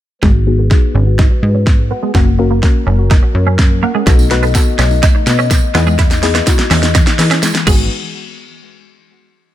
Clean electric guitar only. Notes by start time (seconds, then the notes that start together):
0.23 G#3
0.47 muted clean electric guitar stroke
0.59 B3
0.95 C#4
1.19 D#4
1.31 muted clean electric guitar stroke
1.55 C#4
1.67 muted clean electric guitar stroke
1.91 B3
2.03 G#3
2.15 F#4
2.39 muted clean electric guitar stroke
2.51 A#3
2.87 C#4
3.11 D#4
3.23 muted clean electric guitar stroke
3.47 C#4
3.59 muted clean electric guitar stroke
3.83 A#3
3.95 G#3
4.07 B3
4.31 muted clean electric guitar stroke
4.43 B3
4.79 C#4
5.03 D#4
5.15 muted clean electric guitar stroke
5.39 C#4
5.51 muted clean electric guitar stroke
5.75 B3
5.87 G#3
5.99 E4
6.23 muted clean electric guitar stroke
6.35 B3
6.71 C#4
6.95 D#4
7.07 muted clean electric guitar stroke
7.31 C#4
7.43 muted clean electric guitar stroke
7.67 G#3